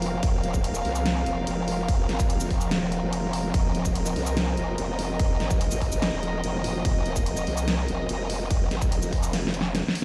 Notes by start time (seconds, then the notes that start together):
Already playing: F1 F3 C4 A#4 F5
0.02 open hi-hat
0.23 F1, kick, closed hi-hat, crash
0.43 D#1, closed hi-hat
0.54 kick, shaker
0.64 closed hi-hat, crash
0.75 shaker
0.85 C2, open hi-hat
0.95 shaker
1.06 snare, closed hi-hat, crash
1.26 F1, closed hi-hat
1.47 F1, closed hi-hat, crash
1.68 open hi-hat
1.88 kick, closed hi-hat, crash
2.09 G1, snare, closed hi-hat
2.19 kick, shaker
2.30 closed hi-hat, crash
2.40 F1, shaker
2.51 kick, open hi-hat
2.61 shaker
2.71 snare, closed hi-hat, crash
2.82 D#1
2.92 closed hi-hat
3.02 F1
3.13 closed hi-hat, crash
3.33 open hi-hat
3.54 F1 D#5, kick, closed hi-hat, crash
3.75 D#1, closed hi-hat
3.85 kick, shaker
3.95 closed hi-hat, crash
4.06 shaker
4.16 C2, open hi-hat
4.27 shaker
4.37 snare, closed hi-hat, crash
4.57 F1, closed hi-hat
4.78 F1, closed hi-hat, crash
4.99 open hi-hat
5.19 kick, closed hi-hat, crash
5.40 G1, snare, closed hi-hat
5.50 kick, shaker
5.61 closed hi-hat, crash
5.71 G#1, shaker
5.82 kick, open hi-hat
5.92 shaker
6.02 snare, closed hi-hat, crash
6.13 D#1
6.23 closed hi-hat
6.44 F1, closed hi-hat, crash
6.54 zap
6.64 open hi-hat
6.85 F1, kick, closed hi-hat, crash
7.06 D#1, closed hi-hat
7.16 kick, shaker
7.26 closed hi-hat, crash
7.37 shaker
7.47 C2, open hi-hat
7.57 shaker
7.68 snare, closed hi-hat, crash
7.88 F1, closed hi-hat
8.09 F1, closed hi-hat, crash
8.30 open hi-hat
8.51 kick, closed hi-hat, crash
8.71 G1, snare, closed hi-hat
8.82 kick, shaker
8.92 closed hi-hat, crash
9.02 F1, shaker
9.13 kick, open hi-hat
9.23 shaker
9.33 snare, closed hi-hat, crash
9.47 snare
9.54 closed hi-hat
9.61 snare
9.75 snare, closed hi-hat, crash
9.88 snare
9.95 open hi-hat